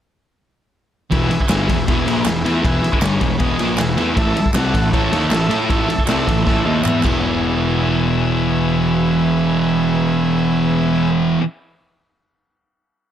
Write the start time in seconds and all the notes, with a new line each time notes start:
1.11 E1 E2 B2 E3 G#4 B4 E5, kick, ride
1.30 muted distorted electric guitar stroke, muted picked electric bass stroke, ride
1.40 kick
1.49 G1 G2 D3 G3 G#4 B4 E5, snare, clap, ride
1.68 E1 E2 B2, kick, ride
1.88 E1 E2 B2 E3 G#4 B4 E5, kick, ride
2.07 A#1 A#2 F3 A#3, ride
2.26 E1 E2 B2 G#4 B4 E5, snare, clap, ride
2.45 E2 E3 B3 E4, ride
2.63 E1 E2 B2 E3 G#4 B4 E5, kick, ride
2.83 muted distorted electric guitar stroke, muted picked electric bass stroke, ride
2.93 kick
3.02 G1 G2 D3 G3 G#4 B4 C#5, snare, clap, ride
3.20 E1 E2 B2, kick, ride
3.38 E1 E2 B2 E3 G#4 B4 D#5, kick, ride
3.59 A#1 A#2 F3 A#3, ride
3.78 E1 E2 B2 G#4 B4 E5, snare, clap, ride
3.97 E2 E3 B3 E4, ride
4.16 A1 A2 E3 A3 E4 A4 E5, kick, ride
4.35 muted picked electric bass stroke, muted distorted electric guitar stroke, ride
4.46 kick
4.54 C2 C3 G3 C4 E4 A4 F#5, snare, clap, ride
4.74 A1 A2 E3, kick, ride
4.91 A1 A2 E3 A3 E4 A4 C#5, kick, ride
5.12 D#2 D#3 A#3 D#4, ride
5.29 A1 A2 E3 E4 A4 E5, snare, clap, ride
5.49 A2 A3 E4 A4, ride
5.68 A1 A2 E3 A3 E4 A4 E5, kick, ride
5.89 muted distorted electric guitar stroke, muted picked electric bass stroke, ride
5.98 kick
6.07 C2 C3 G3 C4 E4 A4 E5, snare, clap, ride
6.27 A1 A2 E3, kick, ride
6.44 A1 A2 E3 A3 E4 A4 E5, kick, snare
6.65 D#2 D#3 A#3 D#4
6.82 E2 E3 B3 E4 B4 E5, clap, mid tom
7.02 E1 E2 B2 G#4 B4 E5, kick, clap, crash
7.06 E3